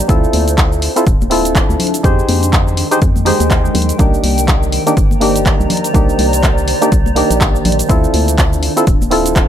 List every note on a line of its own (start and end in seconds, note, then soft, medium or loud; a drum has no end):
0.00 2.83 C5 medium
0.00 0.88 D5 medium
0.08 0.26 D2 loud
0.08 0.93 C4 medium
0.08 2.04 D4 medium
0.08 0.93 E4 medium
0.08 0.93 F4 medium
0.08 0.94 A4 medium
0.08 kick loud
0.08 closed hi-hat medium
0.08 shaker medium
0.24 shaker soft
0.33 0.89 D2 loud
0.33 open hi-hat loud
0.33 high conga medium
0.48 closed hi-hat soft
0.48 shaker medium
0.58 kick loud
0.58 clap loud
0.58 closed hi-hat medium
0.58 shaker medium
0.73 shaker soft
0.82 open hi-hat loud
0.96 1.05 C4 medium
0.96 1.05 E4 medium
0.96 1.05 F4 medium
0.96 1.05 A4 loud
0.96 closed hi-hat soft
0.96 shaker medium
1.07 1.62 D1 medium
1.07 kick loud
1.07 closed hi-hat medium
1.07 shaker medium
1.21 high conga medium
1.21 shaker soft
1.30 2.01 C4 medium
1.30 2.02 E4 medium
1.30 2.02 F4 medium
1.30 2.02 A4 medium
1.30 open hi-hat loud
1.45 closed hi-hat medium
1.45 shaker medium
1.55 kick loud
1.55 clap loud
1.55 closed hi-hat soft
1.55 shaker medium
1.70 1.76 D2 medium
1.70 shaker soft
1.80 open hi-hat loud
1.80 low conga medium
1.87 closed hi-hat medium
1.94 closed hi-hat soft
1.94 shaker medium
2.03 2.22 F2 loud
2.03 7.90 D#3 medium
2.03 2.88 D#4 medium
2.03 2.88 G4 medium
2.03 2.88 G#4 medium
2.03 2.89 C5 medium
2.03 kick loud
2.03 closed hi-hat medium
2.03 shaker medium
2.19 shaker soft
2.29 2.84 F2 loud
2.29 open hi-hat loud
2.29 high conga medium
2.33 3.99 G#3 medium
2.38 5.43 G5 medium
2.43 closed hi-hat soft
2.43 shaker medium
2.53 kick loud
2.53 clap loud
2.53 closed hi-hat medium
2.53 shaker medium
2.68 shaker soft
2.77 open hi-hat loud
2.91 3.00 D#4 medium
2.91 3.00 G4 medium
2.91 3.00 G#4 medium
2.91 3.00 C5 loud
2.91 closed hi-hat soft
2.91 shaker medium
3.02 3.32 F2 medium
3.02 kick loud
3.02 closed hi-hat medium
3.02 shaker medium
3.16 high conga medium
3.16 shaker soft
3.25 3.96 D#4 medium
3.25 3.97 G4 medium
3.25 3.97 G#4 medium
3.25 3.97 C5 medium
3.25 open hi-hat loud
3.40 3.69 D#2 medium
3.40 closed hi-hat medium
3.40 shaker medium
3.50 kick loud
3.50 clap loud
3.50 closed hi-hat soft
3.50 shaker medium
3.65 shaker soft
3.75 3.92 D#2 loud
3.75 open hi-hat loud
3.75 low conga medium
3.82 closed hi-hat medium
3.89 closed hi-hat soft
3.89 shaker medium
3.98 4.17 C2 loud
3.98 4.83 A#3 medium
3.98 4.83 D4 medium
3.98 4.84 D#4 medium
3.98 4.84 G4 medium
3.98 kick loud
3.98 closed hi-hat medium
3.98 shaker medium
4.03 9.48 C5 medium
4.14 7.90 A#5 medium
4.14 shaker soft
4.24 4.79 C2 loud
4.24 open hi-hat loud
4.24 high conga medium
4.38 closed hi-hat soft
4.38 shaker medium
4.48 8.69 D5 medium
4.48 kick loud
4.48 clap loud
4.48 closed hi-hat medium
4.48 shaker medium
4.63 shaker soft
4.72 open hi-hat loud
4.86 4.95 A#3 medium
4.86 4.95 D4 medium
4.86 4.95 D#4 medium
4.86 4.95 G4 loud
4.86 closed hi-hat medium
4.86 shaker medium
4.97 5.52 G1 medium
4.97 kick loud
4.97 closed hi-hat medium
4.97 shaker medium
5.11 high conga medium
5.11 shaker soft
5.20 5.92 A#3 medium
5.20 5.92 D4 medium
5.20 5.92 D#4 medium
5.20 5.92 G4 loud
5.20 open hi-hat loud
5.36 closed hi-hat medium
5.36 shaker medium
5.46 kick loud
5.46 clap loud
5.46 closed hi-hat soft
5.46 shaker medium
5.60 5.67 C2 medium
5.60 shaker soft
5.70 open hi-hat loud
5.70 low conga medium
5.77 closed hi-hat medium
5.84 closed hi-hat soft
5.84 shaker medium
5.93 6.12 C2 loud
5.93 6.78 A#3 medium
5.93 6.78 D4 medium
5.93 6.79 D#4 medium
5.93 6.79 G4 medium
5.93 kick loud
5.93 closed hi-hat medium
5.93 shaker medium
6.09 shaker soft
6.18 6.74 C2 loud
6.18 open hi-hat loud
6.18 high conga medium
6.33 closed hi-hat medium
6.33 shaker medium
6.43 kick loud
6.43 clap loud
6.43 closed hi-hat medium
6.43 shaker medium
6.58 shaker soft
6.68 open hi-hat loud
6.81 6.90 A#3 medium
6.81 6.90 D4 medium
6.81 6.90 D#4 medium
6.81 6.90 G4 loud
6.81 closed hi-hat soft
6.81 shaker medium
6.92 7.23 C2 medium
6.92 kick loud
6.92 closed hi-hat medium
6.92 shaker medium
7.06 high conga medium
7.06 shaker soft
7.15 7.87 A#3 medium
7.15 7.87 D4 medium
7.15 7.87 D#4 medium
7.15 7.88 G4 medium
7.15 open hi-hat loud
7.31 7.60 A#1 medium
7.31 closed hi-hat medium
7.31 shaker medium
7.41 kick loud
7.41 clap loud
7.41 closed hi-hat medium
7.41 shaker medium
7.55 shaker soft
7.65 7.83 A#1 medium
7.65 open hi-hat loud
7.65 low conga medium
7.72 closed hi-hat medium
7.79 closed hi-hat medium
7.79 shaker medium
7.89 8.07 D2 loud
7.89 8.73 C4 medium
7.89 9.48 D4 medium
7.89 8.73 E4 medium
7.89 8.74 F4 medium
7.89 8.74 A4 medium
7.89 kick loud
7.89 closed hi-hat medium
7.89 shaker medium
8.04 shaker soft
8.14 8.69 D2 loud
8.14 open hi-hat loud
8.14 high conga medium
8.28 9.48 F4 medium
8.28 closed hi-hat medium
8.28 shaker medium
8.38 kick loud
8.38 clap loud
8.38 closed hi-hat medium
8.38 shaker medium
8.53 shaker soft
8.63 open hi-hat loud
8.76 8.85 C4 medium
8.76 8.85 E4 medium
8.76 8.85 F4 medium
8.76 8.86 A4 loud
8.76 closed hi-hat medium
8.76 shaker medium
8.87 9.42 D1 medium
8.87 kick loud
8.87 closed hi-hat medium
8.87 shaker medium
9.02 high conga medium
9.02 shaker soft
9.11 9.48 C4 medium
9.11 9.48 E4 medium
9.11 9.48 F4 medium
9.11 9.48 A4 loud
9.11 open hi-hat loud
9.26 closed hi-hat medium
9.26 shaker medium
9.36 kick loud
9.36 clap loud
9.36 closed hi-hat medium
9.36 shaker medium